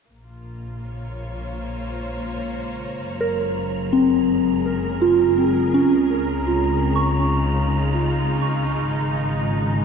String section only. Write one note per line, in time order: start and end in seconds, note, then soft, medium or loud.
0.09 4.12 A#3 medium
0.24 4.07 F4 medium
0.87 4.16 C#5 medium
1.18 4.16 C5 medium
3.00 5.90 F#3 medium
4.09 7.07 G#4 medium
4.32 7.07 A#4 medium
5.90 8.81 C#3 medium
6.17 9.85 G#3 medium
7.19 9.85 D#4 medium
7.19 9.85 F4 medium